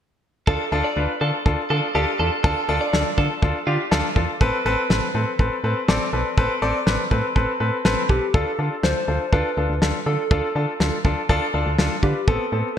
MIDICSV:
0, 0, Header, 1, 6, 480
1, 0, Start_track
1, 0, Tempo, 491803
1, 462, Time_signature, 4, 2, 24, 8
1, 12475, End_track
2, 0, Start_track
2, 0, Title_t, "Clean electric guitar"
2, 0, Program_c, 0, 27
2, 463, Note_on_c, 0, 69, 87
2, 562, Note_off_c, 0, 69, 0
2, 823, Note_on_c, 0, 74, 65
2, 1022, Note_off_c, 0, 74, 0
2, 1181, Note_on_c, 0, 69, 66
2, 1281, Note_off_c, 0, 69, 0
2, 1662, Note_on_c, 0, 69, 73
2, 1762, Note_off_c, 0, 69, 0
2, 1903, Note_on_c, 0, 67, 75
2, 2002, Note_off_c, 0, 67, 0
2, 2142, Note_on_c, 0, 69, 78
2, 2242, Note_off_c, 0, 69, 0
2, 2383, Note_on_c, 0, 69, 88
2, 2483, Note_off_c, 0, 69, 0
2, 2742, Note_on_c, 0, 74, 69
2, 2942, Note_off_c, 0, 74, 0
2, 3101, Note_on_c, 0, 69, 70
2, 3202, Note_off_c, 0, 69, 0
2, 3581, Note_on_c, 0, 65, 75
2, 3681, Note_off_c, 0, 65, 0
2, 12475, End_track
3, 0, Start_track
3, 0, Title_t, "Soft synth lead"
3, 0, Program_c, 1, 80
3, 7905, Note_on_c, 1, 67, 83
3, 8146, Note_on_c, 1, 69, 99
3, 8160, Note_off_c, 1, 67, 0
3, 8623, Note_on_c, 1, 72, 105
3, 8637, Note_off_c, 1, 69, 0
3, 9103, Note_on_c, 1, 71, 97
3, 9117, Note_off_c, 1, 72, 0
3, 9582, Note_off_c, 1, 71, 0
3, 9823, Note_on_c, 1, 69, 100
3, 10046, Note_off_c, 1, 69, 0
3, 10062, Note_on_c, 1, 69, 112
3, 10743, Note_off_c, 1, 69, 0
3, 11742, Note_on_c, 1, 67, 83
3, 11982, Note_on_c, 1, 69, 98
3, 11996, Note_off_c, 1, 67, 0
3, 12475, Note_off_c, 1, 69, 0
3, 12475, End_track
4, 0, Start_track
4, 0, Title_t, "Grand piano"
4, 0, Program_c, 2, 0
4, 461, Note_on_c, 2, 69, 109
4, 462, Note_on_c, 2, 62, 93
4, 462, Note_on_c, 2, 65, 90
4, 610, Note_off_c, 2, 62, 0
4, 610, Note_off_c, 2, 65, 0
4, 610, Note_off_c, 2, 69, 0
4, 704, Note_on_c, 2, 62, 101
4, 704, Note_on_c, 2, 65, 94
4, 704, Note_on_c, 2, 69, 110
4, 851, Note_off_c, 2, 62, 0
4, 851, Note_off_c, 2, 65, 0
4, 851, Note_off_c, 2, 69, 0
4, 943, Note_on_c, 2, 71, 83
4, 944, Note_on_c, 2, 62, 75
4, 944, Note_on_c, 2, 65, 69
4, 1091, Note_off_c, 2, 62, 0
4, 1091, Note_off_c, 2, 65, 0
4, 1091, Note_off_c, 2, 71, 0
4, 1182, Note_on_c, 2, 62, 74
4, 1183, Note_on_c, 2, 65, 66
4, 1183, Note_on_c, 2, 69, 81
4, 1330, Note_off_c, 2, 62, 0
4, 1330, Note_off_c, 2, 65, 0
4, 1330, Note_off_c, 2, 69, 0
4, 1422, Note_on_c, 2, 62, 78
4, 1422, Note_on_c, 2, 65, 73
4, 1423, Note_on_c, 2, 69, 86
4, 1570, Note_off_c, 2, 62, 0
4, 1570, Note_off_c, 2, 65, 0
4, 1570, Note_off_c, 2, 69, 0
4, 1662, Note_on_c, 2, 65, 70
4, 1663, Note_on_c, 2, 62, 80
4, 1663, Note_on_c, 2, 69, 85
4, 1810, Note_off_c, 2, 62, 0
4, 1810, Note_off_c, 2, 65, 0
4, 1810, Note_off_c, 2, 69, 0
4, 1902, Note_on_c, 2, 62, 95
4, 1902, Note_on_c, 2, 65, 87
4, 1903, Note_on_c, 2, 69, 107
4, 2050, Note_off_c, 2, 62, 0
4, 2050, Note_off_c, 2, 65, 0
4, 2050, Note_off_c, 2, 69, 0
4, 2143, Note_on_c, 2, 62, 76
4, 2144, Note_on_c, 2, 65, 68
4, 2144, Note_on_c, 2, 69, 82
4, 2290, Note_off_c, 2, 62, 0
4, 2291, Note_off_c, 2, 65, 0
4, 2291, Note_off_c, 2, 69, 0
4, 2381, Note_on_c, 2, 62, 101
4, 2381, Note_on_c, 2, 65, 90
4, 2382, Note_on_c, 2, 69, 113
4, 2530, Note_off_c, 2, 62, 0
4, 2530, Note_off_c, 2, 65, 0
4, 2530, Note_off_c, 2, 69, 0
4, 2622, Note_on_c, 2, 62, 105
4, 2622, Note_on_c, 2, 65, 90
4, 2622, Note_on_c, 2, 69, 116
4, 2770, Note_off_c, 2, 62, 0
4, 2770, Note_off_c, 2, 65, 0
4, 2770, Note_off_c, 2, 69, 0
4, 2860, Note_on_c, 2, 65, 70
4, 2860, Note_on_c, 2, 69, 85
4, 2861, Note_on_c, 2, 62, 78
4, 3009, Note_off_c, 2, 62, 0
4, 3009, Note_off_c, 2, 65, 0
4, 3009, Note_off_c, 2, 69, 0
4, 3100, Note_on_c, 2, 65, 70
4, 3101, Note_on_c, 2, 62, 75
4, 3101, Note_on_c, 2, 69, 87
4, 3249, Note_off_c, 2, 62, 0
4, 3249, Note_off_c, 2, 65, 0
4, 3249, Note_off_c, 2, 69, 0
4, 3339, Note_on_c, 2, 69, 88
4, 3340, Note_on_c, 2, 62, 79
4, 3341, Note_on_c, 2, 65, 75
4, 3489, Note_off_c, 2, 62, 0
4, 3489, Note_off_c, 2, 65, 0
4, 3489, Note_off_c, 2, 69, 0
4, 3581, Note_on_c, 2, 62, 78
4, 3581, Note_on_c, 2, 65, 70
4, 3582, Note_on_c, 2, 67, 84
4, 3729, Note_off_c, 2, 62, 0
4, 3729, Note_off_c, 2, 65, 0
4, 3730, Note_off_c, 2, 67, 0
4, 3820, Note_on_c, 2, 65, 91
4, 3820, Note_on_c, 2, 69, 107
4, 3821, Note_on_c, 2, 62, 99
4, 3969, Note_off_c, 2, 62, 0
4, 3969, Note_off_c, 2, 65, 0
4, 3969, Note_off_c, 2, 69, 0
4, 4061, Note_on_c, 2, 62, 76
4, 4061, Note_on_c, 2, 65, 71
4, 4061, Note_on_c, 2, 69, 84
4, 4209, Note_off_c, 2, 62, 0
4, 4209, Note_off_c, 2, 65, 0
4, 4209, Note_off_c, 2, 69, 0
4, 4303, Note_on_c, 2, 71, 110
4, 4304, Note_on_c, 2, 60, 100
4, 4304, Note_on_c, 2, 69, 95
4, 4451, Note_off_c, 2, 60, 0
4, 4451, Note_off_c, 2, 69, 0
4, 4451, Note_off_c, 2, 71, 0
4, 4545, Note_on_c, 2, 60, 102
4, 4545, Note_on_c, 2, 69, 95
4, 4546, Note_on_c, 2, 71, 114
4, 4691, Note_off_c, 2, 60, 0
4, 4692, Note_off_c, 2, 69, 0
4, 4692, Note_off_c, 2, 71, 0
4, 4784, Note_on_c, 2, 71, 85
4, 4785, Note_on_c, 2, 60, 78
4, 4785, Note_on_c, 2, 69, 74
4, 4931, Note_off_c, 2, 60, 0
4, 4931, Note_off_c, 2, 69, 0
4, 4931, Note_off_c, 2, 71, 0
4, 5024, Note_on_c, 2, 71, 83
4, 5025, Note_on_c, 2, 60, 76
4, 5025, Note_on_c, 2, 69, 70
4, 5171, Note_off_c, 2, 60, 0
4, 5171, Note_off_c, 2, 69, 0
4, 5171, Note_off_c, 2, 71, 0
4, 5265, Note_on_c, 2, 60, 78
4, 5265, Note_on_c, 2, 69, 76
4, 5265, Note_on_c, 2, 71, 88
4, 5411, Note_off_c, 2, 60, 0
4, 5411, Note_off_c, 2, 69, 0
4, 5412, Note_off_c, 2, 71, 0
4, 5505, Note_on_c, 2, 60, 78
4, 5505, Note_on_c, 2, 69, 74
4, 5505, Note_on_c, 2, 71, 88
4, 5651, Note_off_c, 2, 60, 0
4, 5651, Note_off_c, 2, 71, 0
4, 5652, Note_off_c, 2, 69, 0
4, 5743, Note_on_c, 2, 60, 100
4, 5743, Note_on_c, 2, 69, 90
4, 5744, Note_on_c, 2, 74, 111
4, 5891, Note_off_c, 2, 60, 0
4, 5891, Note_off_c, 2, 69, 0
4, 5891, Note_off_c, 2, 74, 0
4, 5984, Note_on_c, 2, 69, 73
4, 5985, Note_on_c, 2, 60, 78
4, 5985, Note_on_c, 2, 71, 84
4, 6131, Note_off_c, 2, 60, 0
4, 6131, Note_off_c, 2, 69, 0
4, 6131, Note_off_c, 2, 71, 0
4, 6222, Note_on_c, 2, 60, 101
4, 6223, Note_on_c, 2, 69, 91
4, 6223, Note_on_c, 2, 71, 115
4, 6370, Note_off_c, 2, 60, 0
4, 6370, Note_off_c, 2, 69, 0
4, 6370, Note_off_c, 2, 71, 0
4, 6462, Note_on_c, 2, 60, 102
4, 6462, Note_on_c, 2, 69, 93
4, 6463, Note_on_c, 2, 74, 116
4, 6610, Note_off_c, 2, 60, 0
4, 6610, Note_off_c, 2, 69, 0
4, 6610, Note_off_c, 2, 74, 0
4, 6700, Note_on_c, 2, 69, 74
4, 6700, Note_on_c, 2, 71, 88
4, 6701, Note_on_c, 2, 60, 77
4, 6849, Note_off_c, 2, 60, 0
4, 6849, Note_off_c, 2, 69, 0
4, 6849, Note_off_c, 2, 71, 0
4, 6941, Note_on_c, 2, 69, 73
4, 6942, Note_on_c, 2, 60, 78
4, 6942, Note_on_c, 2, 71, 89
4, 7090, Note_off_c, 2, 60, 0
4, 7090, Note_off_c, 2, 69, 0
4, 7090, Note_off_c, 2, 71, 0
4, 7180, Note_on_c, 2, 71, 91
4, 7181, Note_on_c, 2, 60, 80
4, 7181, Note_on_c, 2, 69, 76
4, 7329, Note_off_c, 2, 60, 0
4, 7329, Note_off_c, 2, 69, 0
4, 7329, Note_off_c, 2, 71, 0
4, 7420, Note_on_c, 2, 71, 86
4, 7421, Note_on_c, 2, 60, 78
4, 7421, Note_on_c, 2, 69, 72
4, 7569, Note_off_c, 2, 60, 0
4, 7569, Note_off_c, 2, 69, 0
4, 7569, Note_off_c, 2, 71, 0
4, 7662, Note_on_c, 2, 60, 100
4, 7662, Note_on_c, 2, 69, 90
4, 7662, Note_on_c, 2, 71, 108
4, 7810, Note_off_c, 2, 60, 0
4, 7810, Note_off_c, 2, 69, 0
4, 7810, Note_off_c, 2, 71, 0
4, 7902, Note_on_c, 2, 60, 78
4, 7902, Note_on_c, 2, 69, 71
4, 7902, Note_on_c, 2, 71, 83
4, 8050, Note_off_c, 2, 60, 0
4, 8050, Note_off_c, 2, 69, 0
4, 8050, Note_off_c, 2, 71, 0
4, 8141, Note_on_c, 2, 62, 84
4, 8141, Note_on_c, 2, 65, 80
4, 8141, Note_on_c, 2, 69, 98
4, 8289, Note_off_c, 2, 65, 0
4, 8289, Note_off_c, 2, 69, 0
4, 8290, Note_off_c, 2, 62, 0
4, 8382, Note_on_c, 2, 62, 70
4, 8382, Note_on_c, 2, 69, 76
4, 8383, Note_on_c, 2, 65, 62
4, 8530, Note_off_c, 2, 62, 0
4, 8530, Note_off_c, 2, 65, 0
4, 8530, Note_off_c, 2, 69, 0
4, 8621, Note_on_c, 2, 62, 69
4, 8622, Note_on_c, 2, 65, 65
4, 8622, Note_on_c, 2, 69, 75
4, 8769, Note_off_c, 2, 62, 0
4, 8770, Note_off_c, 2, 65, 0
4, 8770, Note_off_c, 2, 69, 0
4, 8861, Note_on_c, 2, 65, 62
4, 8861, Note_on_c, 2, 69, 77
4, 8862, Note_on_c, 2, 62, 65
4, 9009, Note_off_c, 2, 65, 0
4, 9009, Note_off_c, 2, 69, 0
4, 9010, Note_off_c, 2, 62, 0
4, 9100, Note_on_c, 2, 62, 92
4, 9101, Note_on_c, 2, 65, 81
4, 9101, Note_on_c, 2, 69, 96
4, 9249, Note_off_c, 2, 62, 0
4, 9249, Note_off_c, 2, 65, 0
4, 9249, Note_off_c, 2, 69, 0
4, 9344, Note_on_c, 2, 62, 66
4, 9344, Note_on_c, 2, 65, 63
4, 9344, Note_on_c, 2, 69, 76
4, 9491, Note_off_c, 2, 62, 0
4, 9491, Note_off_c, 2, 65, 0
4, 9491, Note_off_c, 2, 69, 0
4, 9582, Note_on_c, 2, 62, 68
4, 9583, Note_on_c, 2, 65, 62
4, 9583, Note_on_c, 2, 69, 77
4, 9730, Note_off_c, 2, 62, 0
4, 9730, Note_off_c, 2, 65, 0
4, 9731, Note_off_c, 2, 69, 0
4, 9822, Note_on_c, 2, 62, 67
4, 9822, Note_on_c, 2, 65, 61
4, 9823, Note_on_c, 2, 69, 74
4, 9970, Note_off_c, 2, 62, 0
4, 9970, Note_off_c, 2, 65, 0
4, 9970, Note_off_c, 2, 69, 0
4, 10063, Note_on_c, 2, 62, 86
4, 10063, Note_on_c, 2, 65, 81
4, 10063, Note_on_c, 2, 69, 94
4, 10211, Note_off_c, 2, 62, 0
4, 10211, Note_off_c, 2, 65, 0
4, 10211, Note_off_c, 2, 69, 0
4, 10303, Note_on_c, 2, 62, 69
4, 10303, Note_on_c, 2, 65, 64
4, 10304, Note_on_c, 2, 69, 80
4, 10450, Note_off_c, 2, 65, 0
4, 10451, Note_off_c, 2, 62, 0
4, 10451, Note_off_c, 2, 69, 0
4, 10543, Note_on_c, 2, 62, 69
4, 10543, Note_on_c, 2, 65, 62
4, 10544, Note_on_c, 2, 69, 78
4, 10691, Note_off_c, 2, 62, 0
4, 10691, Note_off_c, 2, 65, 0
4, 10691, Note_off_c, 2, 69, 0
4, 10784, Note_on_c, 2, 62, 80
4, 10784, Note_on_c, 2, 69, 87
4, 10785, Note_on_c, 2, 65, 71
4, 10931, Note_off_c, 2, 62, 0
4, 10931, Note_off_c, 2, 65, 0
4, 10931, Note_off_c, 2, 69, 0
4, 11023, Note_on_c, 2, 69, 122
4, 11024, Note_on_c, 2, 62, 108
4, 11024, Note_on_c, 2, 65, 96
4, 11171, Note_off_c, 2, 62, 0
4, 11171, Note_off_c, 2, 65, 0
4, 11171, Note_off_c, 2, 69, 0
4, 11263, Note_on_c, 2, 62, 80
4, 11263, Note_on_c, 2, 65, 76
4, 11264, Note_on_c, 2, 69, 89
4, 11411, Note_off_c, 2, 62, 0
4, 11411, Note_off_c, 2, 65, 0
4, 11411, Note_off_c, 2, 69, 0
4, 11503, Note_on_c, 2, 62, 81
4, 11503, Note_on_c, 2, 65, 76
4, 11503, Note_on_c, 2, 69, 91
4, 11650, Note_off_c, 2, 62, 0
4, 11650, Note_off_c, 2, 65, 0
4, 11650, Note_off_c, 2, 69, 0
4, 11743, Note_on_c, 2, 62, 66
4, 11743, Note_on_c, 2, 65, 62
4, 11743, Note_on_c, 2, 71, 73
4, 11890, Note_off_c, 2, 62, 0
4, 11890, Note_off_c, 2, 65, 0
4, 11890, Note_off_c, 2, 71, 0
4, 11982, Note_on_c, 2, 59, 89
4, 11983, Note_on_c, 2, 60, 78
4, 11983, Note_on_c, 2, 69, 99
4, 12130, Note_off_c, 2, 59, 0
4, 12130, Note_off_c, 2, 60, 0
4, 12130, Note_off_c, 2, 69, 0
4, 12223, Note_on_c, 2, 59, 71
4, 12223, Note_on_c, 2, 60, 65
4, 12223, Note_on_c, 2, 69, 78
4, 12370, Note_off_c, 2, 59, 0
4, 12370, Note_off_c, 2, 69, 0
4, 12371, Note_off_c, 2, 60, 0
4, 12475, End_track
5, 0, Start_track
5, 0, Title_t, "FM bass"
5, 0, Program_c, 3, 39
5, 462, Note_on_c, 3, 38, 91
5, 566, Note_off_c, 3, 38, 0
5, 701, Note_on_c, 3, 38, 96
5, 805, Note_off_c, 3, 38, 0
5, 941, Note_on_c, 3, 38, 103
5, 1045, Note_off_c, 3, 38, 0
5, 1182, Note_on_c, 3, 50, 95
5, 1285, Note_off_c, 3, 50, 0
5, 1423, Note_on_c, 3, 38, 101
5, 1526, Note_off_c, 3, 38, 0
5, 1662, Note_on_c, 3, 50, 100
5, 1765, Note_off_c, 3, 50, 0
5, 1902, Note_on_c, 3, 38, 93
5, 2005, Note_off_c, 3, 38, 0
5, 2142, Note_on_c, 3, 40, 94
5, 2246, Note_off_c, 3, 40, 0
5, 2382, Note_on_c, 3, 38, 108
5, 2486, Note_off_c, 3, 38, 0
5, 2622, Note_on_c, 3, 38, 95
5, 2725, Note_off_c, 3, 38, 0
5, 2862, Note_on_c, 3, 38, 97
5, 2965, Note_off_c, 3, 38, 0
5, 3102, Note_on_c, 3, 50, 96
5, 3205, Note_off_c, 3, 50, 0
5, 3343, Note_on_c, 3, 38, 107
5, 3446, Note_off_c, 3, 38, 0
5, 3581, Note_on_c, 3, 50, 97
5, 3685, Note_off_c, 3, 50, 0
5, 3821, Note_on_c, 3, 38, 91
5, 3925, Note_off_c, 3, 38, 0
5, 4061, Note_on_c, 3, 40, 89
5, 4165, Note_off_c, 3, 40, 0
5, 4303, Note_on_c, 3, 33, 108
5, 4406, Note_off_c, 3, 33, 0
5, 4541, Note_on_c, 3, 33, 96
5, 4645, Note_off_c, 3, 33, 0
5, 4781, Note_on_c, 3, 33, 108
5, 4885, Note_off_c, 3, 33, 0
5, 5022, Note_on_c, 3, 45, 99
5, 5125, Note_off_c, 3, 45, 0
5, 5263, Note_on_c, 3, 33, 99
5, 5366, Note_off_c, 3, 33, 0
5, 5501, Note_on_c, 3, 45, 86
5, 5605, Note_off_c, 3, 45, 0
5, 5742, Note_on_c, 3, 33, 89
5, 5845, Note_off_c, 3, 33, 0
5, 5982, Note_on_c, 3, 35, 83
5, 6086, Note_off_c, 3, 35, 0
5, 6222, Note_on_c, 3, 33, 106
5, 6326, Note_off_c, 3, 33, 0
5, 6462, Note_on_c, 3, 33, 92
5, 6565, Note_off_c, 3, 33, 0
5, 6701, Note_on_c, 3, 33, 97
5, 6805, Note_off_c, 3, 33, 0
5, 6941, Note_on_c, 3, 45, 95
5, 7045, Note_off_c, 3, 45, 0
5, 7182, Note_on_c, 3, 33, 104
5, 7286, Note_off_c, 3, 33, 0
5, 7421, Note_on_c, 3, 45, 89
5, 7525, Note_off_c, 3, 45, 0
5, 7661, Note_on_c, 3, 33, 94
5, 7765, Note_off_c, 3, 33, 0
5, 7899, Note_on_c, 3, 35, 91
5, 8004, Note_off_c, 3, 35, 0
5, 8141, Note_on_c, 3, 38, 100
5, 8245, Note_off_c, 3, 38, 0
5, 8381, Note_on_c, 3, 50, 92
5, 8485, Note_off_c, 3, 50, 0
5, 8620, Note_on_c, 3, 38, 98
5, 8724, Note_off_c, 3, 38, 0
5, 8861, Note_on_c, 3, 38, 100
5, 8965, Note_off_c, 3, 38, 0
5, 9102, Note_on_c, 3, 38, 98
5, 9206, Note_off_c, 3, 38, 0
5, 9342, Note_on_c, 3, 38, 97
5, 9445, Note_off_c, 3, 38, 0
5, 9461, Note_on_c, 3, 38, 88
5, 9565, Note_off_c, 3, 38, 0
5, 9581, Note_on_c, 3, 38, 101
5, 9685, Note_off_c, 3, 38, 0
5, 9821, Note_on_c, 3, 50, 98
5, 9925, Note_off_c, 3, 50, 0
5, 10062, Note_on_c, 3, 38, 107
5, 10165, Note_off_c, 3, 38, 0
5, 10301, Note_on_c, 3, 50, 99
5, 10405, Note_off_c, 3, 50, 0
5, 10541, Note_on_c, 3, 38, 100
5, 10645, Note_off_c, 3, 38, 0
5, 10781, Note_on_c, 3, 38, 97
5, 10885, Note_off_c, 3, 38, 0
5, 11023, Note_on_c, 3, 38, 96
5, 11126, Note_off_c, 3, 38, 0
5, 11262, Note_on_c, 3, 38, 91
5, 11365, Note_off_c, 3, 38, 0
5, 11382, Note_on_c, 3, 38, 101
5, 11485, Note_off_c, 3, 38, 0
5, 11503, Note_on_c, 3, 38, 101
5, 11606, Note_off_c, 3, 38, 0
5, 11740, Note_on_c, 3, 50, 105
5, 11844, Note_off_c, 3, 50, 0
5, 11982, Note_on_c, 3, 33, 103
5, 12085, Note_off_c, 3, 33, 0
5, 12222, Note_on_c, 3, 45, 95
5, 12326, Note_off_c, 3, 45, 0
5, 12475, End_track
6, 0, Start_track
6, 0, Title_t, "Drums"
6, 462, Note_on_c, 9, 36, 110
6, 560, Note_off_c, 9, 36, 0
6, 1423, Note_on_c, 9, 36, 85
6, 1520, Note_off_c, 9, 36, 0
6, 2382, Note_on_c, 9, 36, 112
6, 2480, Note_off_c, 9, 36, 0
6, 2864, Note_on_c, 9, 38, 96
6, 2961, Note_off_c, 9, 38, 0
6, 3102, Note_on_c, 9, 36, 85
6, 3199, Note_off_c, 9, 36, 0
6, 3343, Note_on_c, 9, 36, 84
6, 3440, Note_off_c, 9, 36, 0
6, 3823, Note_on_c, 9, 38, 100
6, 3921, Note_off_c, 9, 38, 0
6, 4060, Note_on_c, 9, 36, 85
6, 4158, Note_off_c, 9, 36, 0
6, 4303, Note_on_c, 9, 36, 111
6, 4400, Note_off_c, 9, 36, 0
6, 4784, Note_on_c, 9, 38, 98
6, 4882, Note_off_c, 9, 38, 0
6, 5263, Note_on_c, 9, 36, 84
6, 5361, Note_off_c, 9, 36, 0
6, 5743, Note_on_c, 9, 38, 106
6, 5841, Note_off_c, 9, 38, 0
6, 6222, Note_on_c, 9, 36, 111
6, 6320, Note_off_c, 9, 36, 0
6, 6703, Note_on_c, 9, 38, 95
6, 6801, Note_off_c, 9, 38, 0
6, 6941, Note_on_c, 9, 36, 87
6, 7039, Note_off_c, 9, 36, 0
6, 7182, Note_on_c, 9, 36, 85
6, 7280, Note_off_c, 9, 36, 0
6, 7662, Note_on_c, 9, 38, 105
6, 7759, Note_off_c, 9, 38, 0
6, 7899, Note_on_c, 9, 36, 85
6, 7997, Note_off_c, 9, 36, 0
6, 8142, Note_on_c, 9, 36, 115
6, 8239, Note_off_c, 9, 36, 0
6, 8623, Note_on_c, 9, 38, 98
6, 8720, Note_off_c, 9, 38, 0
6, 9102, Note_on_c, 9, 36, 87
6, 9200, Note_off_c, 9, 36, 0
6, 9582, Note_on_c, 9, 38, 101
6, 9680, Note_off_c, 9, 38, 0
6, 10062, Note_on_c, 9, 36, 113
6, 10159, Note_off_c, 9, 36, 0
6, 10543, Note_on_c, 9, 38, 101
6, 10641, Note_off_c, 9, 38, 0
6, 10781, Note_on_c, 9, 36, 89
6, 10879, Note_off_c, 9, 36, 0
6, 11022, Note_on_c, 9, 36, 88
6, 11120, Note_off_c, 9, 36, 0
6, 11502, Note_on_c, 9, 38, 100
6, 11600, Note_off_c, 9, 38, 0
6, 11740, Note_on_c, 9, 36, 87
6, 11837, Note_off_c, 9, 36, 0
6, 11982, Note_on_c, 9, 36, 116
6, 12079, Note_off_c, 9, 36, 0
6, 12475, End_track
0, 0, End_of_file